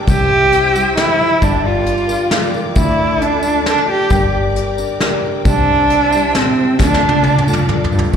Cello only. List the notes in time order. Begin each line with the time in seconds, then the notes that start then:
0.10 G4
0.98 E4
1.43 D4
1.66 F4
2.77 E4
3.21 D4
3.67 D4
3.91 G4
5.47 D4
6.35 C4
6.81 D4
7.92 G2